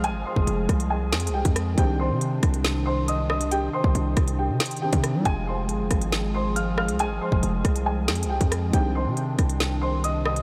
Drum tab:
HH |x-----------------------x-----------x-----x-----------------x---x---x---------x-----x-----------|x-----------------------x-----------x-----x-----------------------------x-----------------x-----|x-----------------------x-----------x-----x-----------------x--x--x--x--------x-----x-----------|x-----------------------x-----------x-----x-----------------------------x-----------------x-----|
SD |------------------------------------r-----------------------o-----------------------r-----------|------------------------------------r-----------o-----------------------------------r-----------|------------------------------------r-----------------------o-----------------------r-----------|------------------------------------r-----------o-----------------------------------r-----------|
BD |------------------o-----------------o-----------------------------------------o-----------------|o-----------------------------------o-----------------------------------------------------------|------------------o-----------------o-----------------------------------------o-----------------|o-----------------------------------o-----------------------------------------------------------|

HH |x-----------------------x-----------x-----x-----------------x---x---x---------x-----x-----------|x-----------------------x-----------x-----x-----------------------------x-----------------x-----|
SD |------------------------------------r-----------------------o-----------------------r-----------|------------------------------------r-----------o-----------------------------------r-----------|
BD |------------------o-----------------o-----------------------------------------o-----------------|o-----------------------------------o-----------------------------------------------------------|